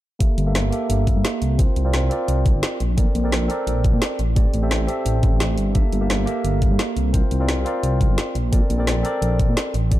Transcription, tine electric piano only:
0.19 A#3 G4 A4 E5
0.46 A#3 G4 A4 E5
0.71 A#3 G4 A4 E5
1.58 C4 F4 A#4 C5
1.85 C4 F4 A#4 D5
2.09 C4 F4 A#4 D5
2.97 C4 A4 A#4 D5
3.24 C4 A4 A#4 D5
3.48 C4 A4 A#4 D5
4.36 C4 G4 A4 D5
4.62 C4 G4 A4 E5
4.87 C4 G4 A4 E5
5.74 A#3 G4 A4 E5
6.01 A#3 G4 A4 E5
6.25 A#3 G4 A4 E5
7.13 C4 F4 A#4 C5
7.40 C4 F4 A#4 D5
7.65 C4 F4 A#4 D5
8.52 C4 A4 A#4 D5
8.78 C4 A4 A#4 D5
9.03 C4 A4 A#4 D5
9.90 C4 G4 A4 D5

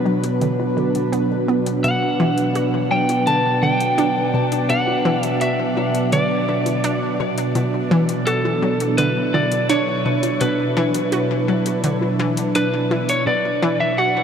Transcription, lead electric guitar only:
1.84 F#5
2.91 G5
3.27 A5
3.63 G5
4.70 F#5
5.25 E5
5.41 E5
6.13 D5
8.27 A4
8.98 B4
9.34 D5
9.70 C#5
10.41 B4
12.56 B4
13.10 C#5
13.27 D5
13.80 E5
13.98 F#5

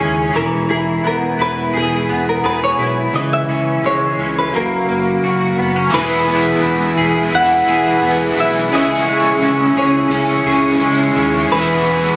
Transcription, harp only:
Already playing: A#4 C#5
0.36 A#4
0.70 G#4
1.07 A#4
1.41 B4
1.77 G#4
2.29 A#4
2.46 B4
2.64 C#5
3.15 D#5
3.33 E5
3.86 C#5
4.38 B4
4.56 A#4
5.94 B4
7.35 F#5
8.40 E5
8.75 D#5
9.78 C#5
11.52 B4

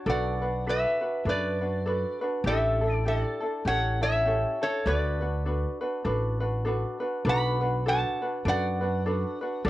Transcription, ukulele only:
0.06 D4 F#4 A4 B4
0.42 D4 F#4 B4
0.66 D4 F#4 A4 B4
1.01 D4 F#4 B4
1.26 D4 F#4 A4 B4
1.61 D4 F#4 B4
1.86 D4 F#4 A4 B4
2.21 D4 F#4 B4
2.46 D4 E4 G4 A4
2.81 D4 E4 A4
3.05 D4 E4 G4 A4
3.40 D4 E4 A4
3.66 C#4 E4 G4 A4
4.01 C#4 E4 A4
4.25 C#4 E4 G4 A4
4.61 C#4 E4 A4
4.86 D4 F#4 A4 B4
5.21 D4 F#4 B4
5.45 D4 F#4 A4 B4
5.81 D4 F#4 B4
6.05 D4 F#4 A4 B4
6.40 D4 F#4 B4
6.65 D4 F#4 A4 B4
7.00 D4 F#4 B4
7.25 D4 F#4 A4 B4
7.61 D4 F#4 B4
7.86 D4 F#4 A4 B4
8.22 D4 F#4 B4
8.45 D4 F#4 A4 B4
8.81 D4 F#4 B4
9.06 D4 F#4 A4 B4
9.41 D4 F#4 B4
9.65 D4 F#4 A4 D5

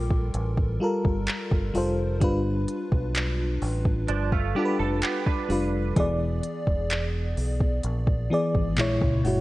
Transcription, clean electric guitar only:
4.09 F3 D4
4.32 A3 F4
4.56 B3 G4
4.79 A4
5.03 B3 G4
5.26 D4 B4

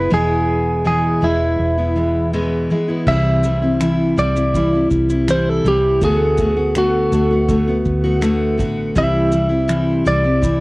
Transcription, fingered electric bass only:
0.12 E1
1.22 E1
1.59 E1
3.07 C2
4.18 C2
4.91 C2
5.64 C2
6.02 D2
7.12 D2
7.85 D2
8.59 A1
8.96 C2
10.06 C2

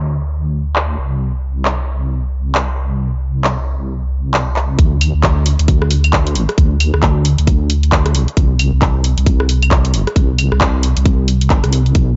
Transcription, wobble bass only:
Already playing: D2
0.98 C2
4.79 D2
5.14 D2
5.59 D2
6.35 A1
6.58 D2
6.94 D2
7.38 D2
8.15 C2
8.37 C2
8.73 C2
9.17 C2
9.94 G1
10.16 C2
10.52 C2
10.97 C2
11.50 G1
11.64 C2
11.95 B1

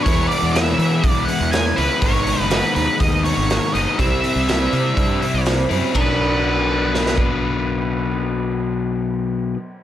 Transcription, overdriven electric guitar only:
0.05 E3 G#3 B3 E4
1.77 E3 G#3 B3 E4
2.01 G#2 D#3 G#3 B3 D#4
3.74 G#2 D#3 G#3 B3 D#4
3.98 C3 G3 C4 E4
5.69 C3 G3 C4 E4
5.93 B2 F#3 B3 D4

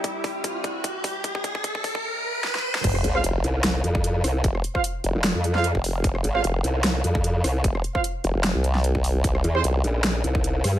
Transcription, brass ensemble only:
3.15 F4 C5 F5
4.75 F4 C5 F5
5.55 F4 C5 F5
6.35 F4 C5 F5
7.95 F4 C5 F5
9.55 C4 G4 C5

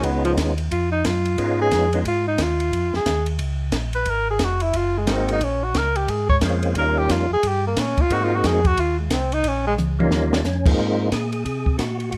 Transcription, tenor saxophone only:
0.04 B3
0.25 F3
0.72 F4
0.92 D#4
1.06 F4
1.61 G#4
2.08 F4
2.28 D#4
2.42 F4
2.96 G#4
3.95 B4
4.10 A#4
4.31 G#4
4.44 F#4
4.63 E4
4.76 F4
4.98 G#3
5.12 C4
5.33 D#4
5.44 C#4
5.64 F#4
5.77 A#4
5.96 G4
6.10 G#4
6.29 C#5
6.78 A#4
6.98 G4
7.11 F4
7.33 G#4
7.48 G4
7.67 A#3
7.80 C#4
8.01 F4
8.13 F#4
8.24 F4
8.35 F#4
8.46 G#4
8.67 F#4
8.80 F4
9.00 G#3
9.13 C4
9.34 D#4
9.48 C#4
9.67 G#3

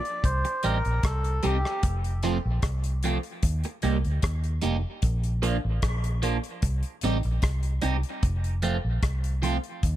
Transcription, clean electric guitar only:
0.45 muted clean electric guitar stroke
0.64 G3 C4 D#4 G4
1.43 G3 C4 D#4 G4
2.23 F3 A3 C4 F4
3.04 F3 A3 C4 F4
3.65 muted clean electric guitar stroke
3.83 G3 A#3 D#4 G4
4.62 G3 A#3 D#4 G4
5.42 F3 A#3 D4 F4
6.22 F3 A#3 D4 F4
7.04 G3 C4 D#4 G4
7.82 G3 C4 D#4 G4
8.63 F3 A3 C4 F4
9.42 F3 A3 C4 F4

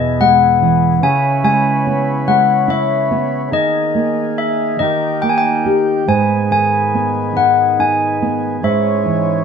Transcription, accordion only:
Already playing: E3 B3 G#4
1.02 C#4 B4
3.50 D#3 A#3 G#4
4.82 G4
6.08 D#3 B3 G#4
8.64 G#2 E3 C#4

